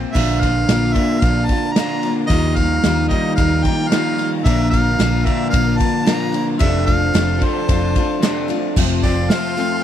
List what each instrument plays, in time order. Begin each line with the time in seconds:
Already playing: clean electric guitar A#2 A#3 C4 F4, steel-string acoustic guitar A#3 C4 F4
0.12 clean electric guitar A#2 D3 A#3 D4, steel-string acoustic guitar A#2 F3 A#3 D4 F4, string section D4 A#4 F5 A#5, harmonica E5, kick, crash
0.16 picked electric bass A#1, clean electric guitar F4
0.41 steel-string acoustic guitar D4 F4, harmonica F5, kick, ride
0.45 steel-string acoustic guitar A#3
0.69 picked electric bass A#1, steel-string acoustic guitar A#2 F3 A#3 D4 F4, snare, ride
0.93 clean electric guitar D3 A#3 D4 F4, harmonica E5, kick, ride
0.98 clean electric guitar A#2
1.20 picked electric bass A#1, steel-string acoustic guitar F3 A#3, harmonica F5, kick, ride
1.25 steel-string acoustic guitar D4 F4
1.46 harmonica A5, kick, ride
1.51 steel-string acoustic guitar A#3 D4 F4
1.72 clean electric guitar A#2, harmonica A#5
1.76 steel-string acoustic guitar A#2 F3 A#3 D4 F4, clean electric guitar D3 A#3 D4 F4, snare, ride
2.03 steel-string acoustic guitar A#3 D4 F4, ride
2.27 picked electric bass D#2, clean electric guitar D#3 F3 G3 D#4 A#4, steel-string acoustic guitar D#3 G3, string section D#4 G4 F5, harmonica D#5, kick, ride
2.31 steel-string acoustic guitar A#3 D#4 F4
2.56 steel-string acoustic guitar D#4 F4, harmonica F5, kick, ride
2.60 steel-string acoustic guitar A#3
2.84 picked electric bass D#2, steel-string acoustic guitar D#3 G3 A#3 D#4 F4, snare, ride
3.08 clean electric guitar F3 G3 D#4 A#4, harmonica D#5, kick, ride
3.13 clean electric guitar D#3
3.36 picked electric bass D#2, steel-string acoustic guitar G3 A#3 D#4, harmonica F5, kick, ride
3.40 steel-string acoustic guitar F4
3.64 steel-string acoustic guitar D#4 F4, harmonica G5, kick, ride
3.68 steel-string acoustic guitar A#3
3.88 clean electric guitar D#3 F3 G3 D#4, harmonica F5
3.92 steel-string acoustic guitar D#3 G3 A#3 D#4 F4, clean electric guitar A#4, snare, ride
4.18 steel-string acoustic guitar A#3 D#4 F4, ride
4.43 picked electric bass A#1, clean electric guitar A#2 D3 F3 A#3 D4, steel-string acoustic guitar A#2 F3 A#3 D4, string section D4 A#4, harmonica E5, kick, ride
4.47 steel-string acoustic guitar F4, clean electric guitar A#4
4.70 steel-string acoustic guitar D4 F4, harmonica F5, kick, ride
4.75 steel-string acoustic guitar A#3
4.99 picked electric bass A#1, steel-string acoustic guitar A#2 F3 A#3 D4 F4, snare, ride
5.24 clean electric guitar D3 F3 A#3 D4 A#4, harmonica E5, kick, ride
5.28 clean electric guitar A#2
5.50 steel-string acoustic guitar F3, harmonica F5, kick
5.54 picked electric bass A#1, steel-string acoustic guitar A#3 D4 F4, ride
5.77 steel-string acoustic guitar D4 F4, harmonica A5, kick, ride
5.83 steel-string acoustic guitar A#3
6.04 clean electric guitar A#2 D3 F3 A#3 D4, steel-string acoustic guitar A#2 F3 A#3 D4, harmonica A5, snare, ride
6.09 steel-string acoustic guitar F4, clean electric guitar A#4
6.15 harmonica A#5
6.32 steel-string acoustic guitar A#3 D4 F4, ride
6.58 picked electric bass F1, steel-string acoustic guitar F2 C3 F3 A3 D4 F4, clean electric guitar F3 C4 D4, string section C5 A5, harmonica E5, kick, ride
6.62 clean electric guitar A4
6.86 steel-string acoustic guitar F3 A3 D4 F4, harmonica F5, kick, ride
7.14 picked electric bass F1, steel-string acoustic guitar F2 C3 F3 A3 D4 F4, snare, ride
7.39 clean electric guitar F3 C4 D4 A4, kick, ride
7.44 harmonica C5
7.68 picked electric bass F1, steel-string acoustic guitar F3 A3 D4 F4, kick, ride
7.95 steel-string acoustic guitar F3 A3 D4 F4, kick, ride
8.20 steel-string acoustic guitar F2 C3 F3 A3 D4, clean electric guitar F3 C4 D4, snare, ride
8.25 steel-string acoustic guitar F4, clean electric guitar A4
8.48 steel-string acoustic guitar F3 A3 D4 F4, ride
8.76 picked electric bass F1, steel-string acoustic guitar F2 C3 F3 A3 C4 F4, clean electric guitar F2, string section F4 C5 A5 C6, kick, crash
9.02 picked electric bass F1, steel-string acoustic guitar F3 A3 C4 F4, clean electric guitar F4, harmonica D5, kick, open hi-hat
9.30 steel-string acoustic guitar F2 C3 F3 A3 C4 F4, clean electric guitar C4, harmonica F5, snare, open hi-hat
9.57 steel-string acoustic guitar F3 A3 C4 F4, clean electric guitar A3, open hi-hat